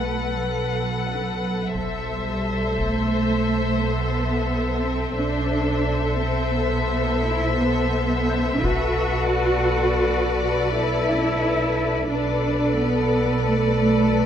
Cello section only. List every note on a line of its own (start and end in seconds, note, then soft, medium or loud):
0.00 0.37 A3 soft
0.36 1.75 F#3 soft
2.09 2.74 G3 soft
2.78 3.81 A3 soft
3.80 4.84 B3 medium
4.83 5.18 C4 medium
5.17 6.21 D4 medium
6.20 6.54 C4 medium
6.54 7.23 B3 medium
7.23 7.58 E4 medium
7.57 8.61 B3 medium
8.62 10.70 F#4 medium
10.70 12.09 E4 medium
12.09 12.77 D4 medium
12.78 13.48 B3 medium
13.46 14.26 A3 medium